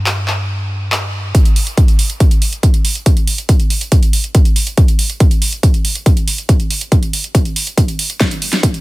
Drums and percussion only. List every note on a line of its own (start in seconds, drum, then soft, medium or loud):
0.06 clap loud
0.28 clap soft
0.92 clap loud
1.35 kick loud
1.35 closed hi-hat medium
1.45 closed hi-hat medium
1.56 open hi-hat loud
1.67 closed hi-hat medium
1.77 kick loud
1.77 closed hi-hat medium
1.88 closed hi-hat medium
1.99 open hi-hat loud
2.10 closed hi-hat soft
2.20 kick loud
2.20 closed hi-hat medium
2.31 closed hi-hat medium
2.42 open hi-hat loud
2.53 closed hi-hat medium
2.63 kick loud
2.63 closed hi-hat medium
2.74 closed hi-hat soft
2.85 open hi-hat loud
2.95 closed hi-hat medium
3.06 kick loud
3.06 closed hi-hat medium
3.17 closed hi-hat soft
3.27 open hi-hat loud
3.38 closed hi-hat medium
3.49 kick loud
3.49 closed hi-hat medium
3.60 closed hi-hat soft
3.70 open hi-hat loud
3.81 closed hi-hat medium
3.92 kick loud
3.92 closed hi-hat medium
4.03 closed hi-hat medium
4.13 open hi-hat loud
4.24 closed hi-hat soft
4.35 kick loud
4.35 closed hi-hat medium
4.45 closed hi-hat soft
4.56 open hi-hat loud
4.67 closed hi-hat soft
4.77 kick loud
4.77 closed hi-hat medium
4.88 closed hi-hat soft
4.99 open hi-hat loud
5.10 closed hi-hat soft
5.20 kick loud
5.20 closed hi-hat medium
5.31 closed hi-hat soft
5.42 open hi-hat loud
5.53 closed hi-hat soft
5.63 kick loud
5.63 closed hi-hat medium
5.74 closed hi-hat soft
5.85 open hi-hat loud
5.95 closed hi-hat soft
6.06 kick loud
6.06 closed hi-hat medium
6.17 closed hi-hat soft
6.28 open hi-hat loud
6.38 closed hi-hat medium
6.49 kick loud
6.49 closed hi-hat medium
6.60 closed hi-hat soft
6.71 open hi-hat loud
6.81 closed hi-hat soft
6.92 kick loud
6.92 closed hi-hat medium
7.03 closed hi-hat soft
7.13 open hi-hat loud
7.24 closed hi-hat soft
7.35 kick loud
7.35 closed hi-hat medium
7.45 closed hi-hat soft
7.56 open hi-hat loud
7.67 closed hi-hat soft
7.78 kick loud
7.78 closed hi-hat medium
7.88 closed hi-hat soft
7.99 open hi-hat loud
8.10 closed hi-hat soft
8.20 kick loud
8.20 snare soft
8.20 closed hi-hat medium
8.31 closed hi-hat soft
8.42 open hi-hat loud
8.53 snare soft
8.53 closed hi-hat soft
8.63 kick loud
8.63 closed hi-hat medium
8.74 closed hi-hat soft